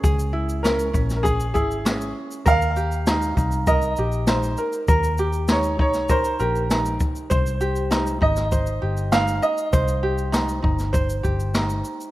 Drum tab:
SH |xx-xxxxxxxxxxx-x|xxxxxxxxxxxxxxxx|xxxxxx-xxxxxxxxx|xxxxxx-xxx-xxxxx|
SD |----o--o----o---|----o-------o---|----o--o----o---|----o--o----o---|
BD |o-----o-o-o-----|o-----o-o-------|o-----o-o-----o-|o-----o-o-------|

SH |xx-xxx-xxxxxxxxx|
SD |----o--o----o---|
BD |o-----o-o-o-----|